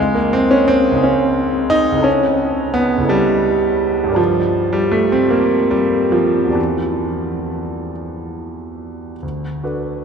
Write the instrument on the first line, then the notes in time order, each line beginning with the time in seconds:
grand piano
Already playing: C#2 G#3 D#4 G#4 D#5 F5
0.15 A#3
0.33 C4
0.51 C#4
0.68 C4
0.92 C#2 D#4
0.97 G#4 D#5
1.01 C#4 F5
1.70 D#4
1.92 C#2 E4
1.98 A4 D#5
2.02 C#4 A5
2.74 B3
2.98 C#2 E4
3.02 A4 D#5
3.08 G3 A5
4.04 G2 G4
4.09 A#4 D5
4.15 F3 A5
4.73 G3
4.92 A3
5.12 C4
5.30 A#3
5.71 G3
6.12 F3
6.43 E2 F#4
6.49 G4 D5
6.53 E3 A5
9.23 D2
9.63 D4 F#4 A4 B4